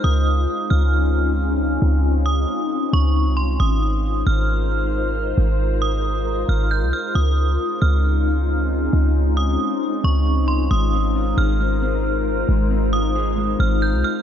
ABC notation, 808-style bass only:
X:1
M:4/4
L:1/16
Q:1/4=135
K:Ab
V:1 name="808-style bass" clef=bass
D,,4 z2 D,,8- D,,2 | D,,6 z4 D,,3 C,,3 | A,,,6 A,,,8- A,,,2 | A,,,8- A,,,2 A,,,3 C,, z2 |
D,,4 z2 D,,8- D,,2 | D,,6 z4 D,,3 C,,3 | A,,,6 A,,,8- A,,,2 | A,,,8- A,,,2 A,,,3 C,, z2 |]